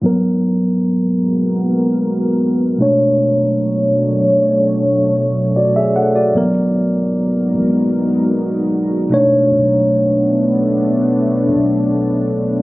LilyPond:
<<
  \new Staff \with { instrumentName = "Tine electric piano" } { \time 4/4 \key b \lydian \tempo 4 = 76 r1 | r2. <fis' d''>16 <gis' e''>16 <a' fis''>16 <fis' d''>16~ | <fis' d''>16 r2. r8. | r1 | }
  \new Staff \with { instrumentName = "Tine electric piano" } { \time 4/4 \key b \lydian <gis, fis b ais'>2.~ <gis, fis b ais'>8 <b, a d' cis''>8~ | <b, a d' cis''>2.~ <b, a d' cis''>8 r8 | <gis, fis b ais'>2.~ <gis, fis b ais'>8 <b, a d' cis''>8~ | <b, a d' cis''>2.~ <b, a d' cis''>8 r8 | }
  \new Staff \with { instrumentName = "Ambient pad" } { \time 4/4 \key b \lydian <gis, gis b fis' ais'>2.~ <gis, gis b fis' ais'>8 <b, fis a d' cis''>8~ | <b, fis a d' cis''>1 | <gis b dis' fis' ais'>2.~ <gis b dis' fis' ais'>8 <a b d'>8~ | <a b d'>1 | }
  \new Staff \with { instrumentName = "808-style bass" } { \clef bass \time 4/4 \key b \lydian r1 | r1 | gis,,4. gis,,2 r8 | b,,2~ b,,8 b,,4. | }
>>